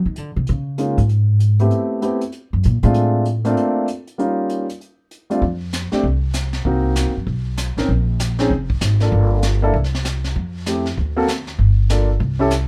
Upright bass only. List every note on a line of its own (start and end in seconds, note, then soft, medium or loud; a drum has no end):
0.06 0.18 D#3 medium
0.18 0.36 D3 medium
0.36 0.48 C3 medium
0.49 0.96 C#3 medium
0.98 1.67 G#2 medium
2.53 2.64 F#2 medium
2.65 2.83 A#2 medium
2.83 3.53 A2 loud
5.42 5.89 F2 medium
5.93 muted upright bass stroke soft
6.04 6.62 C2 medium
6.65 7.03 C2 medium
7.07 7.16 D#2 medium
7.17 7.26 F#2 medium
7.27 7.74 B1 medium
7.77 7.88 A1 medium
7.89 8.47 A#1 medium
8.50 8.79 F1 medium
8.81 9.10 G#1 medium
9.12 9.71 G1 medium
9.74 10.32 C2 medium
10.36 10.94 F2 medium
10.98 11.56 D2 medium
11.59 12.17 G1 medium
12.20 12.67 C2 medium